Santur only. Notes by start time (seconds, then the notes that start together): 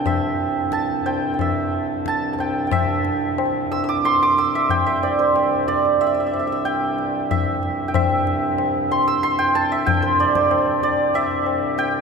Already playing: G5 A5
0.06 E5
0.73 A5
1.06 G5
1.34 G5
1.41 E5
2.08 A5
2.33 A5
2.40 G5
2.67 G5
2.72 E5
3.72 E6
3.84 E6
3.89 D6
4.05 C6
4.23 D6
4.38 E6
4.55 E5
4.70 G5
4.86 E5
5.03 D5
5.19 C5
5.68 D5
6.01 E5
6.07 E5
6.14 E5
6.20 E5
6.27 E5
6.33 E5
6.39 E5
6.47 E5
6.52 E5
6.65 G5
7.31 E5
7.88 G5
7.95 E5
8.92 C6
9.08 E6
9.23 C6
9.39 G5
9.55 A5
9.72 E5
9.86 G5
10.02 C5
10.20 D5
10.35 C5
10.83 D5
11.15 E5
11.79 G5